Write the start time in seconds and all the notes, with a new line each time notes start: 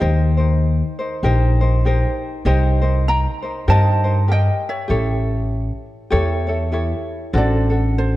Already playing: C5 D#5
0.00 D#2 D#4 G4 A#4 C5
0.37 D#4 A#4 C5
0.99 D#4 A#4 C5
1.23 A#1 D#4 G4 A#4 C5
1.61 D#4 A#4 C5
1.85 D#4 G4 A#4 C5
2.45 C2 D#4 G4 A#4 C5 D#5
2.82 D#4 A#4 C5
3.08 G5 A#5
3.42 D#4 A#4 C5
3.68 G2 D#4 G4 A#4 C5 D#5 A5
4.04 D#4 A#4 C5
4.28 G4 A#4 G5
4.33 D#5
4.69 C#5 E5
4.88 A1 E4 G4 A4 C#5
6.10 E2 E4 G4 A4 C#5
6.47 E4 A4 C#5
6.72 E4 G4 A4 C#5
7.33 A1 D4 F#4 A4 C5
7.37 A4 D5
7.70 D4 F#4 A4
7.98 A4 C5